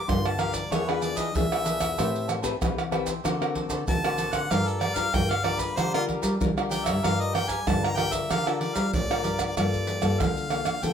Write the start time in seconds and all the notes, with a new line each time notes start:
Already playing: D6
0.08 G2 D3 D4 F4 A#4 C6, pandeiro, tamborim, maracas, surdo
0.25 A5, pandeiro, tamborim, maracas
0.38 D4 F4 G4 A#4 D5 F5, pandeiro, tamborim, maracas
0.53 A#4 D5 F5, pandeiro, maracas, surdo
0.71 E2 E3 D4 F4 G#4 B4 C#5 E5, pandeiro, tamborim, maracas, surdo
0.89 D4 F4 G#4 B4, pandeiro, tamborim, maracas
1.02 D4 G#4 B4 D5 E5, pandeiro, maracas
1.16 E3 D4 G#4 B4 D#5 E5, pandeiro, maracas, surdo
1.34 B2 E3 D4 F4 G#4 E5, pandeiro, maracas, surdo
1.51 D4 F4 G#4 B4 E5, pandeiro, tamborim, maracas
1.64 D4 G#4 B4 E5, pandeiro, maracas
1.79 E2 G#4 B4 E5, pandeiro, tamborim, maracas, surdo
1.97 A2 A3 C4 G4 A4 B4 C5 E5 G5, pandeiro, tamborim, maracas, surdo
2.16 pandeiro, maracas
2.28 A4 C5 E5 G5, pandeiro, tamborim, maracas
2.42 C4 G4 A4 B4 C5 E5 G5, pandeiro, maracas, surdo
2.61 C3 E3 C4 G4 B4, pandeiro, tamborim, maracas, surdo
2.78 pandeiro, tamborim, maracas
2.91 C4 G4 A4 B4 C5 E5 G5, pandeiro, tamborim
3.05 C5 E5 G5, pandeiro, maracas, surdo
3.24 D3 C4 F#4 A4 A#4 C5 D5, pandeiro, tamborim, maracas, surdo
3.41 C4 F#4 A#4, pandeiro, tamborim, maracas
3.55 F#4 A4 C5 D5, pandeiro, surdo
3.69 D3 F#4 A4 C5 D5, pandeiro, maracas, surdo
3.87 A2 D3 C4 F#4 A#4 A5, pandeiro, maracas, surdo
4.04 C4 F#4 A4 A#4 C5 D5, pandeiro, tamborim, maracas
4.18 F#4 A4 C5 D5, pandeiro, maracas
4.32 D3 A4 C5 D5 F#5, pandeiro, tamborim, maracas, surdo
4.50 G2 G3 D4 F4 G4 A#4 D5 F5, pandeiro, tamborim, maracas, surdo
4.68 A4, pandeiro, maracas
4.81 G4 A#4 D5 F5, pandeiro, tamborim
4.96 D4 F4 G4 A#4 D5 F5, pandeiro, maracas, surdo
5.14 G2 D3 D4 F4 A#4 G5, pandeiro, tamborim, maracas, surdo
5.31 F5, pandeiro, tamborim, maracas
5.43 D4 F4 G4 A#4 D5 F5, pandeiro, tamborim
5.58 A#4 B4 D5 F5, pandeiro, maracas, surdo
5.77 D3 G3 G4 A#4 C5 D5 F5, pandeiro, tamborim, maracas, surdo
5.94 D4 F4 A#4, pandeiro, tamborim, maracas
6.07 G4 A#4 D5 F5, pandeiro, surdo
6.22 G3 G4 A#4 D5 F5, pandeiro, maracas, surdo
6.41 D3 G3 D4 F4 A#4, pandeiro, maracas, surdo
6.57 D4 F4 A#4 D5 F5, pandeiro, tamborim, maracas
6.70 G4 A#4 D5 F5 G5, pandeiro, maracas
6.85 G2 A#4 D5 E5 F5, pandeiro, tamborim, maracas, surdo
7.03 G2 G3 D4 F4 G4 A#4 D5 F5, pandeiro, tamborim, maracas, surdo
7.21 D#5, pandeiro, maracas
7.33 G4 A#4 D5 F5 G5, pandeiro, tamborim
7.47 G4 A#4 D5 F5 G#5, pandeiro, maracas, surdo
7.67 G2 D3 D4 F4 A#4 A5, pandeiro, tamborim, maracas, surdo
7.84 A#5, pandeiro, tamborim, maracas
7.96 D4 F4 G4 A#4 D5 F5 G5, pandeiro, tamborim
8.11 A#4 D5 E5 F5, pandeiro, maracas, surdo
8.29 D3 G3 G4 A#4 D5 F5, pandeiro, tamborim, maracas, surdo
8.47 D4 F4 A4 A#4, pandeiro, tamborim, maracas
8.59 G4 A#4 D5 F5, pandeiro
8.74 G3 G4 A#4 D5 F5, pandeiro, maracas, surdo
8.93 A2 D3 D5, pandeiro, maracas, surdo
9.09 D4 F4 A#4 D5 F5, pandeiro, tamborim, maracas
9.23 G2 G4 A#4 D5 F5, pandeiro
9.38 A#4 D5 F5, pandeiro, tamborim, maracas, surdo
9.57 G2 G3 A#3 F4 A4 D5, pandeiro, tamborim, maracas, surdo
9.74 pandeiro, maracas, surdo
9.87 pandeiro
10.02 G2 A#3 F4 A4, pandeiro, tamborim, maracas, surdo
10.20 D3 F5, pandeiro, tamborim, maracas, surdo
10.37 pandeiro, maracas
10.50 A#3 F4 A4, pandeiro, tamborim
10.65 D3, pandeiro, tamborim, maracas
10.83 D3 G3 A#3 F4 A4 G5, pandeiro, maracas, surdo